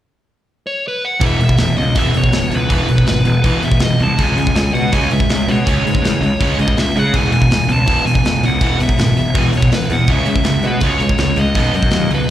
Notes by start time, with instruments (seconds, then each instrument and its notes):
0.67 lead electric guitar C#5
0.88 lead electric guitar B4
1.05 lead electric guitar F#5
1.21 picked electric bass E1, overdriven electric guitar E2 B2 E3, kick, open hi-hat
1.26 lead electric guitar E5
1.39 picked electric bass E1, overdriven electric guitar E2 B2, open hi-hat
1.45 lead electric guitar E5
1.49 kick
1.58 picked electric bass E1, overdriven electric guitar E2 B2, snare, open hi-hat
1.62 lead electric guitar E5
1.77 picked electric bass C#2, overdriven electric guitar E2 B2, lead electric guitar D#5, open hi-hat
1.95 picked electric bass E1, overdriven electric guitar E2 B2 E3, lead electric guitar E5, kick, open hi-hat
2.14 picked electric bass E1, overdriven electric guitar E2 B2, lead electric guitar C#5, open hi-hat
2.24 kick
2.32 picked electric bass E1, overdriven electric guitar E2 B2, snare, open hi-hat
2.51 picked electric bass C#2, overdriven electric guitar E2 B2, open hi-hat
2.55 lead electric guitar B4
2.68 picked electric bass E1, overdriven electric guitar E2 B2 E3, kick, open hi-hat
2.73 lead electric guitar B4
2.88 picked electric bass B1, overdriven electric guitar E2 B2, open hi-hat
2.98 kick
3.04 overdriven electric guitar E2 B2, snare, open hi-hat
3.08 picked electric bass G#1
3.25 picked electric bass E1, overdriven electric guitar E2 B2, open hi-hat
3.43 picked electric bass E1, overdriven electric guitar E2 B2 E3, kick, open hi-hat
3.62 picked electric bass E1, overdriven electric guitar E2 B2, lead electric guitar E5, open hi-hat
3.72 kick
3.80 picked electric bass E1, overdriven electric guitar E2 B2, snare, open hi-hat
3.84 lead electric guitar D#5
3.99 picked electric bass C2, overdriven electric guitar E2 B2, open hi-hat
4.03 lead electric guitar A5
4.16 picked electric bass C#2, overdriven electric guitar C#3 G#3 C#4, kick, open hi-hat
4.23 lead electric guitar G#5
4.36 picked electric bass C#2, overdriven electric guitar C#3 G#3, lead electric guitar G#5, open hi-hat
4.47 kick
4.54 picked electric bass C#2, overdriven electric guitar C#3 G#3, lead electric guitar G#5, snare, open hi-hat
4.71 picked electric bass B2, overdriven electric guitar C#3 G#3, lead electric guitar F#5, open hi-hat
4.92 picked electric bass C#2, overdriven electric guitar C#3 G#3 C#4, lead electric guitar G#5, kick, open hi-hat
5.11 picked electric bass C#2, overdriven electric guitar C#3 G#3, lead electric guitar E5, open hi-hat
5.20 kick
5.29 picked electric bass C#2, overdriven electric guitar C#3 G#3, snare, open hi-hat
5.48 picked electric bass B2, overdriven electric guitar C#3 G#3, lead electric guitar C#5, open hi-hat
5.64 picked electric bass C#2, overdriven electric guitar C#3 G#3 C#4, kick, open hi-hat
5.69 lead electric guitar C#5
5.85 picked electric bass G#2, overdriven electric guitar C#3 G#3, open hi-hat
5.95 kick
6.02 picked electric bass E2, overdriven electric guitar C#3 G#3, snare, open hi-hat
6.21 picked electric bass C#2, overdriven electric guitar C#3 G#3, open hi-hat
6.40 picked electric bass C#2, overdriven electric guitar C#3 G#3 C#4, kick, open hi-hat
6.59 picked electric bass C#2, overdriven electric guitar C#3 G#3, lead electric guitar D#5, open hi-hat
6.68 kick
6.77 picked electric bass C#2, overdriven electric guitar C#3 G#3, lead electric guitar E5, snare, open hi-hat
6.96 picked electric bass C#3, overdriven electric guitar C#3 G#3, lead electric guitar F#5, open hi-hat
7.14 picked electric bass E1, overdriven electric guitar E2 B2 E3, lead electric guitar G#5, kick, open hi-hat
7.32 picked electric bass E1, overdriven electric guitar E2 B2, lead electric guitar G#5, open hi-hat
7.42 kick
7.50 picked electric bass E1, overdriven electric guitar E2 B2, snare, open hi-hat
7.68 picked electric bass C#2, overdriven electric guitar E2 B2, open hi-hat
7.72 lead electric guitar A5
7.88 picked electric bass E1, overdriven electric guitar E2 B2 E3, kick, open hi-hat
8.05 picked electric bass E1, overdriven electric guitar E2 B2, lead electric guitar G#5, open hi-hat
8.15 kick
8.25 picked electric bass E1, overdriven electric guitar E2 B2, snare, open hi-hat
8.43 picked electric bass C#2, overdriven electric guitar E2 B2, lead electric guitar F#5, open hi-hat
8.61 picked electric bass E1, overdriven electric guitar E2 B2 E3, kick, open hi-hat
8.80 picked electric bass B1, overdriven electric guitar E2 B2, lead electric guitar E5, open hi-hat
8.89 kick
8.99 picked electric bass G#1, overdriven electric guitar E2 B2, snare, open hi-hat
9.17 picked electric bass E1, overdriven electric guitar E2 B2, lead electric guitar E5, open hi-hat
9.35 picked electric bass E1, overdriven electric guitar E2 B2 E3, lead electric guitar G#5, kick, open hi-hat
9.53 picked electric bass E1, overdriven electric guitar E2 B2, lead electric guitar C#5, open hi-hat
9.62 kick
9.72 picked electric bass E1, overdriven electric guitar E2 B2, lead electric guitar B4, snare, open hi-hat
9.90 picked electric bass E2, overdriven electric guitar E2 B2, lead electric guitar F#5, open hi-hat
10.07 picked electric bass C#2, overdriven electric guitar C#3 G#3 C#4, lead electric guitar E5, kick, open hi-hat
10.26 picked electric bass C#2, overdriven electric guitar C#3 G#3, open hi-hat
10.31 lead electric guitar E5
10.36 kick
10.44 picked electric bass C#2, overdriven electric guitar C#3 G#3, snare, open hi-hat
10.63 picked electric bass B2, overdriven electric guitar C#3 G#3, open hi-hat
10.67 lead electric guitar B4
10.80 picked electric bass C#2, overdriven electric guitar C#3 G#3 C#4, kick, open hi-hat
10.86 lead electric guitar C#5
11.00 picked electric bass C#2, overdriven electric guitar C#3 G#3, lead electric guitar C#5, open hi-hat
11.09 kick
11.18 picked electric bass C#2, overdriven electric guitar C#3 G#3, snare, open hi-hat
11.36 picked electric bass C#2, overdriven electric guitar C#3 G#3, lead electric guitar D#5, open hi-hat
11.55 picked electric bass B1, overdriven electric guitar B2 F#3 B3, kick, open hi-hat
11.73 picked electric bass F#2, overdriven electric guitar B2 F#3, lead electric guitar D#5, open hi-hat
11.83 kick
11.91 picked electric bass D#2, overdriven electric guitar B2 F#3, snare, open hi-hat
12.10 picked electric bass C#2, overdriven electric guitar B2 F#3, open hi-hat
12.14 lead electric guitar B4